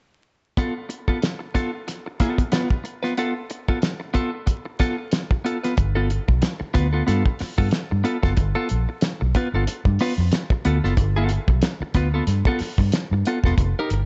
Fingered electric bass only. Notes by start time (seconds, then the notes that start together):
5.78 G1
6.29 B1
6.61 muted fingered electric bass stroke
6.75 D2
7.08 G2
7.41 muted fingered electric bass stroke
7.58 G2
7.92 G2
8.24 F#1
8.38 G1
8.71 A#1
9.22 B1
9.54 G1
9.68 muted fingered electric bass stroke
9.86 G2
10.18 F2
10.65 D2
10.84 F#1
10.97 G1
11.48 B1
11.81 muted fingered electric bass stroke
11.95 D2
12.27 G2
12.61 muted fingered electric bass stroke
12.78 G2
13.11 G2
13.44 E1
13.58 F1
13.91 G1